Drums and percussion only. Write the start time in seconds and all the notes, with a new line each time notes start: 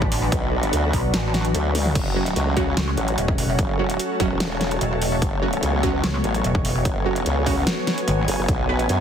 0.02 kick
0.12 open hi-hat
0.32 kick, closed hi-hat
0.63 closed hi-hat
0.73 closed hi-hat
0.93 kick, open hi-hat
1.14 snare, closed hi-hat
1.34 snare, closed hi-hat
1.45 closed hi-hat
1.55 closed hi-hat
1.75 open hi-hat, high tom
1.85 mid tom
1.95 kick, closed hi-hat, crash
2.26 closed hi-hat
2.36 closed hi-hat
2.57 kick, closed hi-hat
2.77 snare, closed hi-hat
2.97 closed hi-hat
3.08 closed hi-hat
3.18 closed hi-hat
3.28 kick
3.38 open hi-hat
3.59 kick, closed hi-hat
3.90 closed hi-hat
3.99 closed hi-hat
4.20 kick, closed hi-hat
4.40 snare, closed hi-hat
4.61 snare, closed hi-hat
4.71 closed hi-hat
4.81 closed hi-hat
5.02 open hi-hat
5.22 kick, closed hi-hat
5.53 closed hi-hat
5.63 closed hi-hat
5.83 kick, closed hi-hat
6.04 snare, closed hi-hat
6.24 closed hi-hat
6.34 closed hi-hat
6.44 closed hi-hat
6.55 kick
6.65 open hi-hat
6.85 kick, closed hi-hat
7.16 closed hi-hat
7.26 closed hi-hat
7.46 kick, open hi-hat
7.67 snare, closed hi-hat
7.87 snare, closed hi-hat
7.98 closed hi-hat
8.08 closed hi-hat
8.28 open hi-hat
8.48 kick, closed hi-hat
8.79 closed hi-hat
8.89 closed hi-hat